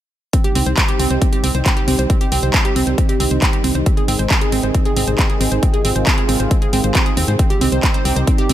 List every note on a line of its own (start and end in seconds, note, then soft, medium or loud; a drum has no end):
0.33 3.83 C3 medium
0.33 8.53 D#3 medium
0.33 3.83 G3 medium
0.33 0.44 C4 medium
0.33 5.59 D#4 medium
0.33 3.83 G4 medium
0.33 kick loud
0.33 closed hi-hat medium
0.44 0.51 G4 loud
0.44 closed hi-hat soft
0.55 0.63 C2 medium
0.55 0.60 C4 medium
0.55 open hi-hat medium
0.66 0.74 C2 medium
0.66 0.77 C5 medium
0.66 closed hi-hat medium
0.77 0.82 C4 loud
0.77 kick loud
0.77 clap loud
0.77 closed hi-hat medium
0.88 0.99 G4 loud
0.88 closed hi-hat medium
0.99 1.07 C2 medium
0.99 1.06 C4 loud
0.99 open hi-hat loud
1.11 1.18 C2 medium
1.11 1.21 C5 medium
1.11 closed hi-hat medium
1.22 1.32 C4 medium
1.22 kick loud
1.22 closed hi-hat medium
1.33 1.40 G4 loud
1.33 closed hi-hat medium
1.44 1.51 C2 medium
1.44 1.48 C4 medium
1.44 open hi-hat medium
1.55 1.62 C2 medium
1.55 1.65 C5 medium
1.55 closed hi-hat soft
1.66 1.70 C4 loud
1.66 kick loud
1.66 clap loud
1.66 closed hi-hat medium
1.77 1.87 G4 loud
1.77 closed hi-hat medium
1.88 1.95 C2 medium
1.88 1.95 C4 medium
1.88 open hi-hat loud
1.99 2.07 C2 medium
1.99 2.09 C5 medium
1.99 closed hi-hat medium
2.10 2.20 C4 medium
2.10 kick loud
2.10 closed hi-hat medium
2.21 2.28 G4 loud
2.21 closed hi-hat soft
2.32 2.40 C2 medium
2.32 2.36 C4 loud
2.32 open hi-hat loud
2.43 2.51 C2 medium
2.43 2.53 C5 medium
2.43 closed hi-hat soft
2.54 2.58 C4 loud
2.54 kick loud
2.54 clap loud
2.54 closed hi-hat medium
2.65 2.75 G4 loud
2.65 closed hi-hat medium
2.76 2.84 C2 medium
2.76 2.83 C4 loud
2.76 open hi-hat loud
2.87 2.95 C2 medium
2.87 2.97 C5 medium
2.87 closed hi-hat medium
2.98 3.08 C4 medium
2.98 kick loud
2.98 closed hi-hat medium
3.09 3.16 G4 loud
3.09 closed hi-hat soft
3.20 3.28 C2 medium
3.20 3.24 C4 loud
3.20 open hi-hat loud
3.31 3.39 C2 medium
3.31 3.41 C5 medium
3.31 closed hi-hat soft
3.42 3.46 C4 loud
3.42 kick loud
3.42 clap loud
3.42 closed hi-hat medium
3.53 3.63 G4 loud
3.53 closed hi-hat soft
3.64 3.72 C2 medium
3.64 3.71 C4 loud
3.64 open hi-hat loud
3.75 3.83 C2 medium
3.75 3.86 C5 medium
3.75 closed hi-hat soft
3.86 8.53 C3 medium
3.86 7.36 G#3 medium
3.86 3.97 C4 medium
3.86 7.36 G#4 medium
3.86 kick loud
3.86 closed hi-hat medium
3.97 4.04 G#4 loud
3.97 closed hi-hat soft
4.08 4.16 G#1 medium
4.08 4.12 C4 loud
4.08 open hi-hat loud
4.19 4.27 G#1 medium
4.19 4.30 C5 medium
4.19 closed hi-hat soft
4.30 4.35 C4 loud
4.30 kick loud
4.30 clap loud
4.30 closed hi-hat medium
4.41 4.52 G#4 loud
4.41 closed hi-hat soft
4.52 4.60 G#1 medium
4.52 4.59 C4 loud
4.52 open hi-hat loud
4.63 4.71 G#1 medium
4.63 4.74 C5 medium
4.74 4.85 C4 medium
4.74 kick loud
4.74 closed hi-hat medium
4.85 4.93 G#4 loud
4.85 closed hi-hat soft
4.96 5.04 G#1 medium
4.96 5.01 C4 loud
4.96 open hi-hat loud
5.07 5.15 G#1 medium
5.07 5.18 C5 medium
5.07 closed hi-hat soft
5.18 5.23 C4 loud
5.18 kick loud
5.18 clap loud
5.18 closed hi-hat medium
5.30 5.40 G#4 loud
5.30 closed hi-hat soft
5.41 5.48 G#1 medium
5.41 5.48 C4 medium
5.41 open hi-hat loud
5.52 5.59 G#1 medium
5.52 5.62 C5 medium
5.52 closed hi-hat soft
5.63 5.73 C4 medium
5.63 7.38 F4 medium
5.63 kick loud
5.63 closed hi-hat medium
5.74 5.81 G#4 loud
5.74 closed hi-hat soft
5.85 5.93 G#1 medium
5.85 5.89 C4 loud
5.85 open hi-hat loud
5.96 6.04 G#1 medium
5.96 6.06 C5 medium
5.96 closed hi-hat soft
6.07 6.11 C4 loud
6.07 kick loud
6.07 clap loud
6.07 closed hi-hat medium
6.18 6.28 G#4 loud
6.18 closed hi-hat soft
6.29 6.37 G#1 medium
6.29 6.36 C4 loud
6.29 open hi-hat loud
6.40 6.48 G#1 medium
6.40 6.50 C5 medium
6.40 closed hi-hat soft
6.51 6.61 C4 medium
6.51 kick loud
6.51 closed hi-hat medium
6.62 6.69 G#4 loud
6.62 closed hi-hat soft
6.73 6.81 G#1 medium
6.73 6.77 C4 loud
6.73 open hi-hat loud
6.84 6.92 G#1 medium
6.84 6.94 C5 medium
6.84 closed hi-hat soft
6.95 6.99 C4 loud
6.95 kick loud
6.95 clap loud
6.95 closed hi-hat medium
7.06 7.16 G#4 loud
7.06 closed hi-hat soft
7.17 7.25 D#2 medium
7.17 7.24 C4 loud
7.17 open hi-hat loud
7.28 7.36 G#2 medium
7.28 7.39 C5 medium
7.28 closed hi-hat soft
7.39 8.53 G3 medium
7.39 7.50 C4 medium
7.39 8.53 D#4 medium
7.39 8.53 G4 medium
7.39 kick loud
7.39 closed hi-hat medium
7.50 7.57 G4 loud
7.50 closed hi-hat soft
7.61 7.69 C2 medium
7.61 7.65 C4 loud
7.61 open hi-hat loud
7.72 7.80 C2 medium
7.72 7.83 C5 medium
7.72 closed hi-hat soft
7.83 7.87 C4 loud
7.83 kick loud
7.83 clap loud
7.83 closed hi-hat medium
7.94 8.01 C5 loud
7.94 closed hi-hat soft
8.05 8.13 C2 medium
8.05 8.12 C4 loud
8.05 open hi-hat loud
8.16 8.24 C2 medium
8.16 8.27 C5 medium
8.16 closed hi-hat soft
8.27 8.38 C4 medium
8.27 kick loud
8.27 closed hi-hat medium
8.38 8.45 G4 loud
8.38 closed hi-hat soft
8.49 8.53 C2 medium
8.49 8.53 C4 loud
8.49 open hi-hat loud